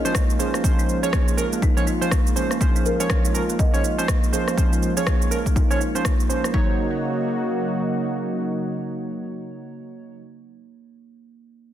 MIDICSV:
0, 0, Header, 1, 5, 480
1, 0, Start_track
1, 0, Tempo, 491803
1, 624, Time_signature, 4, 2, 24, 8
1, 11452, End_track
2, 0, Start_track
2, 0, Title_t, "Kalimba"
2, 0, Program_c, 0, 108
2, 150, Note_on_c, 0, 58, 78
2, 276, Note_off_c, 0, 58, 0
2, 389, Note_on_c, 0, 68, 76
2, 516, Note_off_c, 0, 68, 0
2, 531, Note_on_c, 0, 58, 72
2, 621, Note_off_c, 0, 58, 0
2, 770, Note_on_c, 0, 63, 70
2, 856, Note_off_c, 0, 63, 0
2, 1010, Note_on_c, 0, 68, 70
2, 1100, Note_off_c, 0, 68, 0
2, 1108, Note_on_c, 0, 58, 81
2, 1235, Note_off_c, 0, 58, 0
2, 1493, Note_on_c, 0, 58, 70
2, 1582, Note_off_c, 0, 58, 0
2, 1586, Note_on_c, 0, 63, 98
2, 1663, Note_off_c, 0, 63, 0
2, 1826, Note_on_c, 0, 63, 74
2, 1903, Note_off_c, 0, 63, 0
2, 2066, Note_on_c, 0, 58, 79
2, 2195, Note_off_c, 0, 58, 0
2, 2450, Note_on_c, 0, 58, 69
2, 2540, Note_off_c, 0, 58, 0
2, 2547, Note_on_c, 0, 63, 75
2, 2675, Note_off_c, 0, 63, 0
2, 2691, Note_on_c, 0, 63, 69
2, 2776, Note_off_c, 0, 63, 0
2, 2788, Note_on_c, 0, 70, 68
2, 2923, Note_off_c, 0, 70, 0
2, 3172, Note_on_c, 0, 63, 70
2, 3261, Note_off_c, 0, 63, 0
2, 3413, Note_on_c, 0, 58, 70
2, 3502, Note_off_c, 0, 58, 0
2, 3507, Note_on_c, 0, 75, 100
2, 3583, Note_off_c, 0, 75, 0
2, 3650, Note_on_c, 0, 63, 71
2, 3735, Note_off_c, 0, 63, 0
2, 3747, Note_on_c, 0, 63, 71
2, 3882, Note_off_c, 0, 63, 0
2, 3986, Note_on_c, 0, 58, 79
2, 4115, Note_off_c, 0, 58, 0
2, 4227, Note_on_c, 0, 68, 75
2, 4355, Note_off_c, 0, 68, 0
2, 4371, Note_on_c, 0, 58, 72
2, 4461, Note_off_c, 0, 58, 0
2, 4609, Note_on_c, 0, 63, 73
2, 4695, Note_off_c, 0, 63, 0
2, 4850, Note_on_c, 0, 68, 69
2, 4940, Note_off_c, 0, 68, 0
2, 4946, Note_on_c, 0, 58, 78
2, 5075, Note_off_c, 0, 58, 0
2, 5329, Note_on_c, 0, 58, 72
2, 5420, Note_off_c, 0, 58, 0
2, 5425, Note_on_c, 0, 63, 96
2, 5502, Note_off_c, 0, 63, 0
2, 5663, Note_on_c, 0, 63, 72
2, 5741, Note_off_c, 0, 63, 0
2, 5905, Note_on_c, 0, 58, 76
2, 6034, Note_off_c, 0, 58, 0
2, 6284, Note_on_c, 0, 58, 68
2, 6377, Note_off_c, 0, 58, 0
2, 6382, Note_on_c, 0, 63, 82
2, 6606, Note_off_c, 0, 63, 0
2, 11452, End_track
3, 0, Start_track
3, 0, Title_t, "Synth keys"
3, 0, Program_c, 1, 88
3, 48, Note_on_c, 1, 53, 88
3, 48, Note_on_c, 1, 72, 93
3, 49, Note_on_c, 1, 61, 77
3, 132, Note_off_c, 1, 53, 0
3, 132, Note_off_c, 1, 61, 0
3, 132, Note_off_c, 1, 72, 0
3, 383, Note_on_c, 1, 53, 74
3, 383, Note_on_c, 1, 61, 67
3, 384, Note_on_c, 1, 72, 80
3, 600, Note_off_c, 1, 53, 0
3, 601, Note_off_c, 1, 61, 0
3, 601, Note_off_c, 1, 72, 0
3, 622, Note_on_c, 1, 53, 79
3, 622, Note_on_c, 1, 61, 76
3, 622, Note_on_c, 1, 72, 92
3, 972, Note_off_c, 1, 53, 0
3, 972, Note_off_c, 1, 61, 0
3, 972, Note_off_c, 1, 72, 0
3, 1006, Note_on_c, 1, 61, 81
3, 1006, Note_on_c, 1, 73, 99
3, 1007, Note_on_c, 1, 53, 90
3, 1320, Note_off_c, 1, 53, 0
3, 1320, Note_off_c, 1, 61, 0
3, 1320, Note_off_c, 1, 73, 0
3, 1340, Note_on_c, 1, 53, 76
3, 1340, Note_on_c, 1, 61, 73
3, 1341, Note_on_c, 1, 70, 87
3, 1420, Note_off_c, 1, 53, 0
3, 1420, Note_off_c, 1, 61, 0
3, 1421, Note_off_c, 1, 70, 0
3, 1726, Note_on_c, 1, 53, 86
3, 1726, Note_on_c, 1, 73, 97
3, 1727, Note_on_c, 1, 61, 80
3, 1810, Note_off_c, 1, 53, 0
3, 1810, Note_off_c, 1, 73, 0
3, 1811, Note_off_c, 1, 61, 0
3, 1966, Note_on_c, 1, 53, 81
3, 1966, Note_on_c, 1, 61, 77
3, 1966, Note_on_c, 1, 72, 95
3, 2050, Note_off_c, 1, 53, 0
3, 2050, Note_off_c, 1, 61, 0
3, 2051, Note_off_c, 1, 72, 0
3, 2302, Note_on_c, 1, 53, 71
3, 2302, Note_on_c, 1, 61, 67
3, 2302, Note_on_c, 1, 72, 80
3, 2520, Note_off_c, 1, 53, 0
3, 2520, Note_off_c, 1, 61, 0
3, 2520, Note_off_c, 1, 72, 0
3, 2542, Note_on_c, 1, 53, 81
3, 2542, Note_on_c, 1, 61, 75
3, 2543, Note_on_c, 1, 72, 89
3, 2892, Note_off_c, 1, 53, 0
3, 2892, Note_off_c, 1, 61, 0
3, 2893, Note_off_c, 1, 72, 0
3, 2928, Note_on_c, 1, 53, 85
3, 2928, Note_on_c, 1, 61, 80
3, 2928, Note_on_c, 1, 73, 96
3, 3241, Note_off_c, 1, 53, 0
3, 3241, Note_off_c, 1, 61, 0
3, 3241, Note_off_c, 1, 73, 0
3, 3262, Note_on_c, 1, 61, 67
3, 3262, Note_on_c, 1, 70, 81
3, 3263, Note_on_c, 1, 53, 73
3, 3341, Note_off_c, 1, 61, 0
3, 3341, Note_off_c, 1, 70, 0
3, 3342, Note_off_c, 1, 53, 0
3, 3646, Note_on_c, 1, 53, 87
3, 3646, Note_on_c, 1, 61, 77
3, 3646, Note_on_c, 1, 73, 92
3, 3730, Note_off_c, 1, 61, 0
3, 3731, Note_off_c, 1, 53, 0
3, 3731, Note_off_c, 1, 73, 0
3, 3888, Note_on_c, 1, 53, 84
3, 3888, Note_on_c, 1, 61, 81
3, 3888, Note_on_c, 1, 72, 93
3, 3972, Note_off_c, 1, 53, 0
3, 3972, Note_off_c, 1, 61, 0
3, 3972, Note_off_c, 1, 72, 0
3, 4223, Note_on_c, 1, 53, 71
3, 4223, Note_on_c, 1, 61, 65
3, 4223, Note_on_c, 1, 72, 82
3, 4440, Note_off_c, 1, 53, 0
3, 4440, Note_off_c, 1, 61, 0
3, 4440, Note_off_c, 1, 72, 0
3, 4464, Note_on_c, 1, 53, 80
3, 4464, Note_on_c, 1, 61, 72
3, 4464, Note_on_c, 1, 72, 86
3, 4813, Note_off_c, 1, 53, 0
3, 4813, Note_off_c, 1, 61, 0
3, 4814, Note_off_c, 1, 72, 0
3, 4849, Note_on_c, 1, 53, 86
3, 4849, Note_on_c, 1, 61, 80
3, 4849, Note_on_c, 1, 73, 97
3, 5161, Note_off_c, 1, 61, 0
3, 5162, Note_off_c, 1, 53, 0
3, 5162, Note_off_c, 1, 73, 0
3, 5183, Note_on_c, 1, 53, 73
3, 5183, Note_on_c, 1, 61, 67
3, 5183, Note_on_c, 1, 70, 82
3, 5262, Note_off_c, 1, 53, 0
3, 5262, Note_off_c, 1, 61, 0
3, 5262, Note_off_c, 1, 70, 0
3, 5568, Note_on_c, 1, 61, 78
3, 5569, Note_on_c, 1, 53, 86
3, 5569, Note_on_c, 1, 73, 96
3, 5652, Note_off_c, 1, 53, 0
3, 5652, Note_off_c, 1, 61, 0
3, 5652, Note_off_c, 1, 73, 0
3, 5807, Note_on_c, 1, 53, 85
3, 5807, Note_on_c, 1, 61, 76
3, 5807, Note_on_c, 1, 72, 93
3, 5891, Note_off_c, 1, 53, 0
3, 5891, Note_off_c, 1, 61, 0
3, 5891, Note_off_c, 1, 72, 0
3, 6142, Note_on_c, 1, 53, 68
3, 6143, Note_on_c, 1, 61, 66
3, 6143, Note_on_c, 1, 72, 77
3, 6360, Note_off_c, 1, 53, 0
3, 6360, Note_off_c, 1, 61, 0
3, 6360, Note_off_c, 1, 72, 0
3, 6381, Note_on_c, 1, 54, 78
3, 6381, Note_on_c, 1, 63, 74
3, 6381, Note_on_c, 1, 73, 89
3, 9975, Note_off_c, 1, 54, 0
3, 9975, Note_off_c, 1, 63, 0
3, 9975, Note_off_c, 1, 73, 0
3, 11452, End_track
4, 0, Start_track
4, 0, Title_t, "Analog synth pad"
4, 0, Program_c, 2, 89
4, 0, Note_on_c, 2, 53, 73
4, 0, Note_on_c, 2, 56, 78
4, 0, Note_on_c, 2, 61, 77
4, 0, Note_on_c, 2, 65, 90
4, 2505, Note_off_c, 2, 61, 0
4, 6344, Note_off_c, 2, 53, 0
4, 6344, Note_off_c, 2, 65, 0
4, 6345, Note_off_c, 2, 56, 0
4, 6384, Note_on_c, 2, 54, 73
4, 6385, Note_on_c, 2, 49, 78
4, 6385, Note_on_c, 2, 63, 78
4, 6386, Note_on_c, 2, 58, 72
4, 6386, Note_on_c, 2, 66, 88
4, 9978, Note_off_c, 2, 54, 0
4, 9979, Note_off_c, 2, 63, 0
4, 9980, Note_off_c, 2, 49, 0
4, 9980, Note_off_c, 2, 58, 0
4, 9980, Note_off_c, 2, 66, 0
4, 11452, End_track
5, 0, Start_track
5, 0, Title_t, "Drums"
5, 53, Note_on_c, 9, 82, 52
5, 144, Note_on_c, 9, 37, 101
5, 145, Note_on_c, 9, 36, 115
5, 149, Note_off_c, 9, 82, 0
5, 149, Note_on_c, 9, 82, 89
5, 241, Note_off_c, 9, 37, 0
5, 243, Note_off_c, 9, 36, 0
5, 246, Note_off_c, 9, 82, 0
5, 292, Note_on_c, 9, 82, 52
5, 388, Note_off_c, 9, 82, 0
5, 388, Note_on_c, 9, 82, 83
5, 486, Note_off_c, 9, 82, 0
5, 528, Note_on_c, 9, 37, 58
5, 533, Note_on_c, 9, 82, 52
5, 625, Note_off_c, 9, 37, 0
5, 625, Note_on_c, 9, 36, 106
5, 628, Note_off_c, 9, 82, 0
5, 628, Note_on_c, 9, 82, 85
5, 723, Note_off_c, 9, 36, 0
5, 726, Note_off_c, 9, 82, 0
5, 773, Note_on_c, 9, 82, 48
5, 869, Note_off_c, 9, 82, 0
5, 869, Note_on_c, 9, 82, 47
5, 966, Note_off_c, 9, 82, 0
5, 1012, Note_on_c, 9, 82, 92
5, 1102, Note_on_c, 9, 37, 97
5, 1105, Note_on_c, 9, 36, 109
5, 1107, Note_off_c, 9, 82, 0
5, 1107, Note_on_c, 9, 82, 48
5, 1199, Note_off_c, 9, 37, 0
5, 1202, Note_off_c, 9, 36, 0
5, 1205, Note_off_c, 9, 82, 0
5, 1250, Note_on_c, 9, 82, 85
5, 1346, Note_off_c, 9, 82, 0
5, 1346, Note_on_c, 9, 82, 84
5, 1444, Note_off_c, 9, 82, 0
5, 1490, Note_on_c, 9, 82, 48
5, 1585, Note_on_c, 9, 36, 103
5, 1587, Note_off_c, 9, 82, 0
5, 1587, Note_on_c, 9, 82, 48
5, 1682, Note_off_c, 9, 36, 0
5, 1684, Note_off_c, 9, 82, 0
5, 1730, Note_on_c, 9, 82, 47
5, 1827, Note_off_c, 9, 82, 0
5, 1827, Note_on_c, 9, 82, 49
5, 1925, Note_off_c, 9, 82, 0
5, 1973, Note_on_c, 9, 82, 49
5, 2064, Note_on_c, 9, 37, 92
5, 2065, Note_on_c, 9, 36, 108
5, 2069, Note_off_c, 9, 82, 0
5, 2069, Note_on_c, 9, 82, 85
5, 2161, Note_off_c, 9, 37, 0
5, 2163, Note_off_c, 9, 36, 0
5, 2167, Note_off_c, 9, 82, 0
5, 2212, Note_on_c, 9, 82, 50
5, 2308, Note_off_c, 9, 82, 0
5, 2308, Note_on_c, 9, 82, 77
5, 2406, Note_off_c, 9, 82, 0
5, 2447, Note_on_c, 9, 37, 55
5, 2453, Note_on_c, 9, 82, 49
5, 2545, Note_off_c, 9, 37, 0
5, 2546, Note_on_c, 9, 36, 99
5, 2548, Note_off_c, 9, 82, 0
5, 2548, Note_on_c, 9, 82, 82
5, 2643, Note_off_c, 9, 36, 0
5, 2646, Note_off_c, 9, 82, 0
5, 2692, Note_on_c, 9, 82, 49
5, 2787, Note_off_c, 9, 82, 0
5, 2787, Note_on_c, 9, 82, 46
5, 2884, Note_off_c, 9, 82, 0
5, 2931, Note_on_c, 9, 82, 85
5, 3022, Note_on_c, 9, 37, 102
5, 3026, Note_on_c, 9, 36, 107
5, 3028, Note_off_c, 9, 82, 0
5, 3028, Note_on_c, 9, 82, 49
5, 3120, Note_off_c, 9, 37, 0
5, 3123, Note_off_c, 9, 36, 0
5, 3125, Note_off_c, 9, 82, 0
5, 3171, Note_on_c, 9, 82, 86
5, 3267, Note_off_c, 9, 82, 0
5, 3267, Note_on_c, 9, 82, 83
5, 3365, Note_off_c, 9, 82, 0
5, 3411, Note_on_c, 9, 82, 46
5, 3506, Note_on_c, 9, 36, 103
5, 3508, Note_off_c, 9, 82, 0
5, 3508, Note_on_c, 9, 82, 47
5, 3603, Note_off_c, 9, 36, 0
5, 3605, Note_off_c, 9, 82, 0
5, 3652, Note_on_c, 9, 82, 47
5, 3749, Note_off_c, 9, 82, 0
5, 3749, Note_on_c, 9, 82, 47
5, 3846, Note_off_c, 9, 82, 0
5, 3894, Note_on_c, 9, 82, 48
5, 3985, Note_on_c, 9, 37, 99
5, 3986, Note_on_c, 9, 36, 109
5, 3990, Note_off_c, 9, 82, 0
5, 3990, Note_on_c, 9, 82, 86
5, 4083, Note_off_c, 9, 37, 0
5, 4084, Note_off_c, 9, 36, 0
5, 4088, Note_off_c, 9, 82, 0
5, 4134, Note_on_c, 9, 82, 47
5, 4229, Note_off_c, 9, 82, 0
5, 4229, Note_on_c, 9, 82, 81
5, 4327, Note_off_c, 9, 82, 0
5, 4369, Note_on_c, 9, 37, 60
5, 4374, Note_on_c, 9, 82, 47
5, 4466, Note_on_c, 9, 36, 101
5, 4467, Note_off_c, 9, 37, 0
5, 4471, Note_off_c, 9, 82, 0
5, 4471, Note_on_c, 9, 82, 82
5, 4563, Note_off_c, 9, 36, 0
5, 4568, Note_off_c, 9, 82, 0
5, 4614, Note_on_c, 9, 82, 47
5, 4709, Note_off_c, 9, 82, 0
5, 4709, Note_on_c, 9, 82, 45
5, 4807, Note_off_c, 9, 82, 0
5, 4852, Note_on_c, 9, 82, 88
5, 4945, Note_on_c, 9, 37, 102
5, 4946, Note_on_c, 9, 36, 103
5, 4950, Note_off_c, 9, 82, 0
5, 4950, Note_on_c, 9, 82, 48
5, 5042, Note_off_c, 9, 37, 0
5, 5043, Note_off_c, 9, 36, 0
5, 5047, Note_off_c, 9, 82, 0
5, 5093, Note_on_c, 9, 82, 85
5, 5188, Note_off_c, 9, 82, 0
5, 5188, Note_on_c, 9, 82, 84
5, 5286, Note_off_c, 9, 82, 0
5, 5330, Note_on_c, 9, 36, 58
5, 5334, Note_on_c, 9, 82, 49
5, 5426, Note_off_c, 9, 36, 0
5, 5426, Note_on_c, 9, 36, 102
5, 5429, Note_off_c, 9, 82, 0
5, 5429, Note_on_c, 9, 82, 49
5, 5523, Note_off_c, 9, 36, 0
5, 5526, Note_off_c, 9, 82, 0
5, 5573, Note_on_c, 9, 82, 47
5, 5669, Note_off_c, 9, 82, 0
5, 5669, Note_on_c, 9, 82, 46
5, 5767, Note_off_c, 9, 82, 0
5, 5813, Note_on_c, 9, 82, 48
5, 5903, Note_on_c, 9, 37, 98
5, 5905, Note_on_c, 9, 36, 107
5, 5909, Note_off_c, 9, 82, 0
5, 5909, Note_on_c, 9, 82, 84
5, 6001, Note_off_c, 9, 37, 0
5, 6003, Note_off_c, 9, 36, 0
5, 6006, Note_off_c, 9, 82, 0
5, 6052, Note_on_c, 9, 82, 48
5, 6149, Note_off_c, 9, 82, 0
5, 6149, Note_on_c, 9, 82, 77
5, 6246, Note_off_c, 9, 82, 0
5, 6289, Note_on_c, 9, 37, 59
5, 6294, Note_on_c, 9, 82, 48
5, 6384, Note_on_c, 9, 36, 94
5, 6386, Note_off_c, 9, 37, 0
5, 6391, Note_off_c, 9, 82, 0
5, 6482, Note_off_c, 9, 36, 0
5, 11452, End_track
0, 0, End_of_file